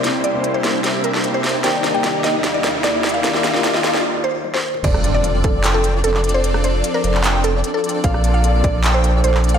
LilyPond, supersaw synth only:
\new Staff \with { instrumentName = "Supersaw synth" } { \time 4/4 \key f \major \tempo 4 = 150 <bes c' e' g' c''>8 <bes c' e' g' c''>8. <bes c' e' g' c''>8. <bes c' e' g' e''>8. <bes c' e' g' c''>4 <bes c' e' g' c''>16 | <bes d' ees' g' d''>8 <bes d' ees' g' d''>8. <bes d' ees' g' d''>8. <bes d' ees' g' f''>8. <bes d' ees' g' d''>4 <bes d' ees' g' d''>16 | <bes d' ees' g' d''>8 <bes d' ees' g' d''>8. <bes d' ees' g' d''>8. r2 | <c' d' f' a' d''>8 <c' d' f' a' d''>8. <c' d' f' a' d''>8. <c' d' f' a' g''>8. <c' d' f' a' d''>4 <c' d' f' a' d''>16 |
<c' d' f' a' d''>8 <c' d' f' a' d''>8. <c' d' f' a' d''>8. <c' d' f' a' g''>8. <c' d' f' a' d''>4 <c' d' f' a' d''>16 | <bes d' f' a' d''>8 <bes d' f' a' d''>8. <bes d' f' a' d''>8. <bes d' f' a' g''>8. <bes d' f' a' d''>4 <bes d' f' a' d''>16 | }